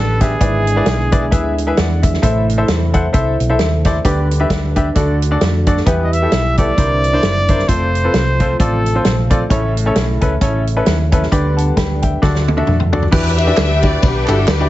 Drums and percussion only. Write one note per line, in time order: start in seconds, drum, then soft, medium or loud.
0.21 kick medium
0.21 snare soft
0.21 closed hi-hat medium
0.41 kick loud
0.41 closed hi-hat medium
0.67 closed hi-hat medium
0.86 snare loud
0.86 closed hi-hat medium
1.12 kick medium
1.12 closed hi-hat medium
1.32 kick loud
1.32 closed hi-hat medium
1.58 closed hi-hat medium
1.77 snare loud
1.77 closed hi-hat medium
2.03 kick medium
2.03 closed hi-hat medium
2.14 snare soft
2.23 kick loud
2.23 closed hi-hat medium
2.50 closed hi-hat medium
2.68 snare loud
2.68 closed hi-hat medium
2.94 kick medium
2.94 closed hi-hat medium
3.14 kick loud
3.14 closed hi-hat medium
3.40 closed hi-hat medium
3.59 snare loud
3.59 closed hi-hat medium
3.85 kick medium
3.85 snare soft
3.85 closed hi-hat medium
4.05 kick loud
4.05 closed hi-hat medium
4.31 closed hi-hat medium
4.50 kick medium
4.50 snare loud
4.50 closed hi-hat medium
4.76 kick medium
4.76 closed hi-hat medium
4.96 kick loud
4.96 closed hi-hat medium
5.22 closed hi-hat medium
5.41 snare loud
5.41 closed hi-hat medium
5.67 kick medium
5.67 closed hi-hat medium
5.77 snare soft
5.87 kick loud
5.87 closed hi-hat medium
6.13 closed hi-hat medium
6.32 snare loud
6.32 closed hi-hat medium
6.57 kick medium
6.57 closed hi-hat medium
6.78 kick loud
6.78 closed hi-hat medium
7.04 closed hi-hat medium
7.23 snare loud
7.23 closed hi-hat medium
7.48 kick medium
7.48 closed hi-hat medium
7.59 snare soft
7.69 kick medium
7.69 closed hi-hat medium
7.95 closed hi-hat medium
8.14 snare loud
8.14 closed hi-hat medium
8.40 kick medium
8.40 closed hi-hat medium
8.60 kick loud
8.60 closed hi-hat medium
8.86 closed hi-hat medium
9.05 snare loud
9.05 closed hi-hat medium
9.30 kick medium
9.30 closed hi-hat medium
9.50 kick loud
9.50 closed hi-hat medium
9.77 closed hi-hat medium
9.96 snare loud
9.96 closed hi-hat medium
10.21 kick medium
10.21 closed hi-hat medium
10.41 kick loud
10.41 closed hi-hat medium
10.67 closed hi-hat medium
10.86 snare loud
10.86 closed hi-hat medium
11.12 kick medium
11.12 closed hi-hat medium
11.23 snare soft
11.32 kick loud
11.32 closed hi-hat medium
11.58 closed hi-hat medium
11.77 kick medium
11.77 snare loud
11.77 closed hi-hat medium
12.02 kick medium
12.02 closed hi-hat medium
12.22 kick loud
12.22 snare soft
12.35 snare soft
12.48 high tom medium
12.57 high tom medium
12.67 mid tom medium
12.80 mid tom medium
12.93 floor tom medium
13.03 floor tom medium
13.12 kick loud
13.12 crash loud
13.12 tambourine medium
13.38 ride bell medium
13.38 tambourine soft
13.57 snare loud
13.57 clap medium
13.57 ride bell medium
13.57 tambourine medium
13.83 kick loud
13.83 ride bell medium
13.83 tambourine soft
14.02 kick loud
14.02 ride bell medium
14.02 tambourine medium
14.28 clap medium
14.28 ride bell medium
14.28 tambourine soft
14.47 snare loud
14.47 clap loud
14.47 ride bell medium
14.47 tambourine loud